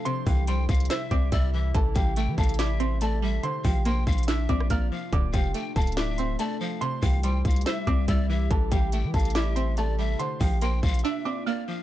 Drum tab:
HH |x---o---x---xxxxx---x---x-------|x---x---x---xxxxx---x---x-------|x---o---x---xxxxx---x---x-------|x---x---x---xxxxx---x---x-------|
CP |----------------x---------------|----------------x---------------|----------------x---------------|----------------x---------------|
SD |----------------o---------------|----------------o---------------|----------------o-----r---------|----------------o---------------|
BD |----o-------o-------o---o-------|o---o-------o-------------------|----o-------o-------o---o-------|o---o-------o-------------------|

HH |x---o---x---xxxxx---x---x-------|x---x---x---xxxxx---x---x-------|x---o---x---xxxx----------------|
CP |----------------x---------------|----------------x---------------|--------------------------------|
SD |----------------o---------------|----------------o---------------|--------------------------------|
BD |----o-------o-------o---o-------|o---o-------o-------------------|----o-------o-------------------|